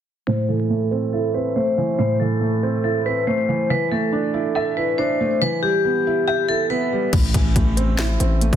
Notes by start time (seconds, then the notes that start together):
0.27 A2 C5
0.49 E3 A4
0.70 A3
0.91 C4
1.13 E4 A4
1.34 C4 B4
1.56 A3 C5
1.78 E3
1.99 A2 C5
2.20 E3 A4
2.41 A3
2.63 C4
2.84 E4 A4
3.06 C4 B4
3.27 A3 C5
3.49 E3
3.70 E3 B4
3.91 A3 A4
4.12 D4
4.34 E4
4.55 A4 E5
4.77 E4 B4
4.98 D4 C5
5.20 A3
5.42 E3 B4
5.62 G3 G4
5.85 B3
6.07 E4
6.28 G4 E5
6.48 E4 A4
6.70 B3 B4
6.92 G3
7.13 A1 A2, kick, closed hi-hat, crash, impact
7.34 A1 E3, kick, closed hi-hat
7.56 A1 A3, kick, closed hi-hat
7.77 C4, closed hi-hat
7.99 E4, snare, clap, closed hi-hat
8.20 A1 C4, closed hi-hat
8.41 A3, closed hi-hat
8.53 A1, kick, closed hi-hat